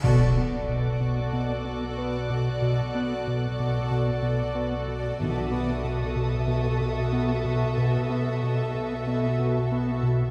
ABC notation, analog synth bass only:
X:1
M:4/4
L:1/8
Q:1/4=93
K:Bm
V:1 name="Analog synth bass" clef=bass
B,, B, B,, B,, B,, B,, B, B,, | B,, B, B,, B,, B,, B,, B, B,, | B,, B, B,, B,, B,, B,, B, B,, | B,, B, B,, B,, B,, B,, B, B,, |]